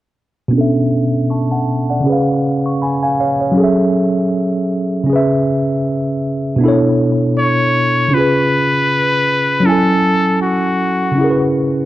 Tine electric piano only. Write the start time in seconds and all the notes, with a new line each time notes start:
0.48 B2 B3
0.53 C#4 D4
0.58 A4 E5
1.30 A5 C#6
1.51 F#5 A5
1.90 D5 F#5
2.00 C#3 C#4
2.06 G#4 B4
2.12 F5
2.66 C#6
2.82 G#5 B5
3.03 F5 G#5
3.20 C#5 F5
3.41 C#5
3.52 F#3 C#4
3.58 G#4 A4
3.64 E5
5.04 C#3 C#4
5.10 G#4 B4
5.16 E5
6.56 B2 B3
6.61 D4 E4
6.66 A4 C#5
8.08 C#3 C#4
8.14 F4 G#4
8.20 B4
9.60 F#3 C#4
9.66 E4 G#5
9.72 A4
11.12 C#3 C#4
11.18 E4 G#4
11.24 A#4
11.30 B4